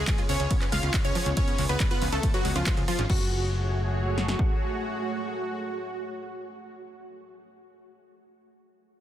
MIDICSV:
0, 0, Header, 1, 7, 480
1, 0, Start_track
1, 0, Key_signature, 3, "minor"
1, 0, Tempo, 431655
1, 1523, Time_signature, 4, 2, 24, 8
1, 10012, End_track
2, 0, Start_track
2, 0, Title_t, "Synth pluck"
2, 0, Program_c, 0, 84
2, 0, Note_on_c, 0, 68, 95
2, 249, Note_off_c, 0, 68, 0
2, 325, Note_on_c, 0, 73, 96
2, 705, Note_off_c, 0, 73, 0
2, 804, Note_on_c, 0, 77, 95
2, 1089, Note_off_c, 0, 77, 0
2, 1163, Note_on_c, 0, 73, 100
2, 1449, Note_off_c, 0, 73, 0
2, 1523, Note_on_c, 0, 73, 96
2, 1809, Note_off_c, 0, 73, 0
2, 1883, Note_on_c, 0, 71, 87
2, 2074, Note_off_c, 0, 71, 0
2, 2124, Note_on_c, 0, 71, 91
2, 2314, Note_off_c, 0, 71, 0
2, 2363, Note_on_c, 0, 69, 90
2, 2553, Note_off_c, 0, 69, 0
2, 2605, Note_on_c, 0, 66, 92
2, 2795, Note_off_c, 0, 66, 0
2, 2843, Note_on_c, 0, 65, 98
2, 3129, Note_off_c, 0, 65, 0
2, 3203, Note_on_c, 0, 65, 89
2, 3393, Note_off_c, 0, 65, 0
2, 3442, Note_on_c, 0, 66, 89
2, 8201, Note_off_c, 0, 66, 0
2, 10012, End_track
3, 0, Start_track
3, 0, Title_t, "Analog synth pad"
3, 0, Program_c, 1, 89
3, 0, Note_on_c, 1, 59, 85
3, 0, Note_on_c, 1, 65, 77
3, 0, Note_on_c, 1, 68, 79
3, 0, Note_on_c, 1, 73, 92
3, 3399, Note_off_c, 1, 73, 0
3, 3404, Note_off_c, 1, 59, 0
3, 3405, Note_off_c, 1, 65, 0
3, 3405, Note_off_c, 1, 68, 0
3, 3441, Note_on_c, 1, 66, 79
3, 3441, Note_on_c, 1, 73, 94
3, 3442, Note_on_c, 1, 57, 85
3, 3442, Note_on_c, 1, 68, 77
3, 8127, Note_off_c, 1, 66, 0
3, 8127, Note_off_c, 1, 73, 0
3, 8128, Note_off_c, 1, 57, 0
3, 8128, Note_off_c, 1, 68, 0
3, 10012, End_track
4, 0, Start_track
4, 0, Title_t, "Supersaw synth"
4, 0, Program_c, 2, 81
4, 0, Note_on_c, 2, 56, 79
4, 0, Note_on_c, 2, 68, 101
4, 250, Note_off_c, 2, 56, 0
4, 250, Note_off_c, 2, 68, 0
4, 326, Note_on_c, 2, 61, 81
4, 326, Note_on_c, 2, 73, 101
4, 706, Note_off_c, 2, 61, 0
4, 706, Note_off_c, 2, 73, 0
4, 804, Note_on_c, 2, 65, 75
4, 804, Note_on_c, 2, 77, 95
4, 1089, Note_off_c, 2, 65, 0
4, 1089, Note_off_c, 2, 77, 0
4, 1164, Note_on_c, 2, 61, 81
4, 1164, Note_on_c, 2, 73, 97
4, 1449, Note_off_c, 2, 61, 0
4, 1449, Note_off_c, 2, 73, 0
4, 1523, Note_on_c, 2, 61, 83
4, 1523, Note_on_c, 2, 73, 100
4, 1809, Note_off_c, 2, 61, 0
4, 1809, Note_off_c, 2, 73, 0
4, 1883, Note_on_c, 2, 59, 83
4, 1884, Note_on_c, 2, 71, 93
4, 2074, Note_off_c, 2, 59, 0
4, 2074, Note_off_c, 2, 71, 0
4, 2123, Note_on_c, 2, 59, 78
4, 2123, Note_on_c, 2, 71, 90
4, 2313, Note_off_c, 2, 71, 0
4, 2314, Note_off_c, 2, 59, 0
4, 2364, Note_on_c, 2, 57, 79
4, 2364, Note_on_c, 2, 69, 90
4, 2554, Note_off_c, 2, 57, 0
4, 2554, Note_off_c, 2, 69, 0
4, 2602, Note_on_c, 2, 54, 80
4, 2602, Note_on_c, 2, 66, 97
4, 2793, Note_off_c, 2, 54, 0
4, 2793, Note_off_c, 2, 66, 0
4, 2843, Note_on_c, 2, 53, 84
4, 2844, Note_on_c, 2, 65, 99
4, 3129, Note_off_c, 2, 53, 0
4, 3129, Note_off_c, 2, 65, 0
4, 3203, Note_on_c, 2, 65, 91
4, 3204, Note_on_c, 2, 53, 80
4, 3394, Note_off_c, 2, 53, 0
4, 3394, Note_off_c, 2, 65, 0
4, 3442, Note_on_c, 2, 66, 105
4, 8128, Note_off_c, 2, 66, 0
4, 10012, End_track
5, 0, Start_track
5, 0, Title_t, "Synth arpeggio sound"
5, 0, Program_c, 3, 84
5, 86, Note_on_c, 3, 56, 84
5, 110, Note_off_c, 3, 56, 0
5, 206, Note_on_c, 3, 65, 105
5, 268, Note_off_c, 3, 65, 0
5, 325, Note_on_c, 3, 53, 77
5, 367, Note_off_c, 3, 53, 0
5, 446, Note_on_c, 3, 61, 75
5, 508, Note_off_c, 3, 61, 0
5, 564, Note_on_c, 3, 59, 88
5, 606, Note_off_c, 3, 59, 0
5, 685, Note_on_c, 3, 71, 80
5, 726, Note_off_c, 3, 71, 0
5, 805, Note_on_c, 3, 56, 109
5, 846, Note_off_c, 3, 56, 0
5, 924, Note_on_c, 3, 61, 74
5, 966, Note_off_c, 3, 61, 0
5, 1044, Note_on_c, 3, 56, 86
5, 1069, Note_off_c, 3, 56, 0
5, 1165, Note_on_c, 3, 68, 82
5, 1190, Note_off_c, 3, 68, 0
5, 1284, Note_on_c, 3, 53, 107
5, 1309, Note_off_c, 3, 53, 0
5, 1404, Note_on_c, 3, 61, 76
5, 1467, Note_off_c, 3, 61, 0
5, 1524, Note_on_c, 3, 53, 84
5, 1566, Note_off_c, 3, 53, 0
5, 1643, Note_on_c, 3, 59, 73
5, 1707, Note_off_c, 3, 59, 0
5, 1763, Note_on_c, 3, 56, 102
5, 1806, Note_off_c, 3, 56, 0
5, 1884, Note_on_c, 3, 61, 78
5, 1926, Note_off_c, 3, 61, 0
5, 2004, Note_on_c, 3, 56, 83
5, 2029, Note_off_c, 3, 56, 0
5, 2123, Note_on_c, 3, 65, 107
5, 2187, Note_off_c, 3, 65, 0
5, 2243, Note_on_c, 3, 53, 79
5, 2285, Note_off_c, 3, 53, 0
5, 2364, Note_on_c, 3, 61, 77
5, 2427, Note_off_c, 3, 61, 0
5, 2482, Note_on_c, 3, 59, 86
5, 2525, Note_off_c, 3, 59, 0
5, 2602, Note_on_c, 3, 71, 78
5, 2645, Note_off_c, 3, 71, 0
5, 2722, Note_on_c, 3, 56, 107
5, 2765, Note_off_c, 3, 56, 0
5, 2842, Note_on_c, 3, 61, 78
5, 2885, Note_off_c, 3, 61, 0
5, 2963, Note_on_c, 3, 56, 86
5, 2989, Note_off_c, 3, 56, 0
5, 3083, Note_on_c, 3, 68, 81
5, 3109, Note_off_c, 3, 68, 0
5, 3203, Note_on_c, 3, 53, 105
5, 3228, Note_off_c, 3, 53, 0
5, 3323, Note_on_c, 3, 61, 78
5, 3387, Note_off_c, 3, 61, 0
5, 3442, Note_on_c, 3, 54, 94
5, 3666, Note_off_c, 3, 54, 0
5, 10012, End_track
6, 0, Start_track
6, 0, Title_t, "Analog synth bass"
6, 0, Program_c, 4, 38
6, 324, Note_on_c, 4, 37, 93
6, 402, Note_off_c, 4, 37, 0
6, 444, Note_on_c, 4, 37, 83
6, 522, Note_off_c, 4, 37, 0
6, 804, Note_on_c, 4, 37, 92
6, 881, Note_off_c, 4, 37, 0
6, 924, Note_on_c, 4, 37, 85
6, 1001, Note_off_c, 4, 37, 0
6, 1163, Note_on_c, 4, 37, 75
6, 1241, Note_off_c, 4, 37, 0
6, 1403, Note_on_c, 4, 37, 84
6, 1481, Note_off_c, 4, 37, 0
6, 1763, Note_on_c, 4, 37, 97
6, 1841, Note_off_c, 4, 37, 0
6, 1883, Note_on_c, 4, 37, 83
6, 1961, Note_off_c, 4, 37, 0
6, 2243, Note_on_c, 4, 37, 97
6, 2321, Note_off_c, 4, 37, 0
6, 2363, Note_on_c, 4, 37, 82
6, 2441, Note_off_c, 4, 37, 0
6, 2723, Note_on_c, 4, 37, 94
6, 2801, Note_off_c, 4, 37, 0
6, 2843, Note_on_c, 4, 37, 82
6, 2921, Note_off_c, 4, 37, 0
6, 3082, Note_on_c, 4, 37, 74
6, 3161, Note_off_c, 4, 37, 0
6, 3323, Note_on_c, 4, 32, 84
6, 3401, Note_off_c, 4, 32, 0
6, 10012, End_track
7, 0, Start_track
7, 0, Title_t, "Drums"
7, 82, Note_on_c, 9, 39, 120
7, 82, Note_on_c, 9, 42, 94
7, 82, Note_on_c, 9, 51, 73
7, 84, Note_on_c, 9, 36, 113
7, 194, Note_off_c, 9, 39, 0
7, 194, Note_off_c, 9, 42, 0
7, 194, Note_off_c, 9, 51, 0
7, 195, Note_off_c, 9, 36, 0
7, 203, Note_on_c, 9, 42, 57
7, 314, Note_off_c, 9, 42, 0
7, 324, Note_on_c, 9, 46, 93
7, 435, Note_off_c, 9, 46, 0
7, 444, Note_on_c, 9, 42, 55
7, 555, Note_off_c, 9, 42, 0
7, 563, Note_on_c, 9, 42, 96
7, 563, Note_on_c, 9, 51, 72
7, 564, Note_on_c, 9, 36, 117
7, 674, Note_off_c, 9, 42, 0
7, 674, Note_off_c, 9, 51, 0
7, 675, Note_off_c, 9, 36, 0
7, 684, Note_on_c, 9, 39, 37
7, 684, Note_on_c, 9, 42, 56
7, 795, Note_off_c, 9, 39, 0
7, 795, Note_off_c, 9, 42, 0
7, 804, Note_on_c, 9, 46, 107
7, 915, Note_off_c, 9, 46, 0
7, 924, Note_on_c, 9, 42, 54
7, 1035, Note_off_c, 9, 42, 0
7, 1043, Note_on_c, 9, 39, 117
7, 1043, Note_on_c, 9, 42, 94
7, 1043, Note_on_c, 9, 51, 74
7, 1044, Note_on_c, 9, 36, 114
7, 1154, Note_off_c, 9, 39, 0
7, 1154, Note_off_c, 9, 42, 0
7, 1154, Note_off_c, 9, 51, 0
7, 1155, Note_off_c, 9, 36, 0
7, 1163, Note_on_c, 9, 42, 54
7, 1274, Note_off_c, 9, 42, 0
7, 1283, Note_on_c, 9, 46, 92
7, 1394, Note_off_c, 9, 46, 0
7, 1402, Note_on_c, 9, 42, 60
7, 1514, Note_off_c, 9, 42, 0
7, 1522, Note_on_c, 9, 42, 100
7, 1522, Note_on_c, 9, 51, 72
7, 1523, Note_on_c, 9, 36, 117
7, 1633, Note_off_c, 9, 42, 0
7, 1633, Note_off_c, 9, 51, 0
7, 1635, Note_off_c, 9, 36, 0
7, 1642, Note_on_c, 9, 42, 55
7, 1753, Note_off_c, 9, 42, 0
7, 1762, Note_on_c, 9, 46, 112
7, 1873, Note_off_c, 9, 46, 0
7, 1883, Note_on_c, 9, 42, 55
7, 1994, Note_off_c, 9, 42, 0
7, 2003, Note_on_c, 9, 36, 122
7, 2003, Note_on_c, 9, 39, 124
7, 2003, Note_on_c, 9, 42, 96
7, 2003, Note_on_c, 9, 51, 70
7, 2114, Note_off_c, 9, 39, 0
7, 2114, Note_off_c, 9, 42, 0
7, 2114, Note_off_c, 9, 51, 0
7, 2115, Note_off_c, 9, 36, 0
7, 2122, Note_on_c, 9, 42, 58
7, 2233, Note_off_c, 9, 42, 0
7, 2242, Note_on_c, 9, 46, 89
7, 2354, Note_off_c, 9, 46, 0
7, 2363, Note_on_c, 9, 42, 55
7, 2474, Note_off_c, 9, 42, 0
7, 2483, Note_on_c, 9, 36, 113
7, 2483, Note_on_c, 9, 42, 98
7, 2483, Note_on_c, 9, 51, 66
7, 2594, Note_off_c, 9, 42, 0
7, 2594, Note_off_c, 9, 51, 0
7, 2595, Note_off_c, 9, 36, 0
7, 2603, Note_on_c, 9, 42, 59
7, 2714, Note_off_c, 9, 42, 0
7, 2723, Note_on_c, 9, 46, 103
7, 2834, Note_off_c, 9, 46, 0
7, 2843, Note_on_c, 9, 42, 57
7, 2954, Note_off_c, 9, 42, 0
7, 2963, Note_on_c, 9, 36, 110
7, 2963, Note_on_c, 9, 39, 125
7, 2963, Note_on_c, 9, 42, 105
7, 2963, Note_on_c, 9, 51, 71
7, 3074, Note_off_c, 9, 39, 0
7, 3074, Note_off_c, 9, 42, 0
7, 3074, Note_off_c, 9, 51, 0
7, 3075, Note_off_c, 9, 36, 0
7, 3083, Note_on_c, 9, 42, 56
7, 3194, Note_off_c, 9, 42, 0
7, 3202, Note_on_c, 9, 46, 94
7, 3314, Note_off_c, 9, 46, 0
7, 3322, Note_on_c, 9, 42, 59
7, 3434, Note_off_c, 9, 42, 0
7, 3443, Note_on_c, 9, 36, 114
7, 3443, Note_on_c, 9, 49, 85
7, 3554, Note_off_c, 9, 49, 0
7, 3555, Note_off_c, 9, 36, 0
7, 4644, Note_on_c, 9, 38, 60
7, 4755, Note_off_c, 9, 38, 0
7, 4764, Note_on_c, 9, 38, 79
7, 4875, Note_off_c, 9, 38, 0
7, 4884, Note_on_c, 9, 36, 93
7, 4995, Note_off_c, 9, 36, 0
7, 10012, End_track
0, 0, End_of_file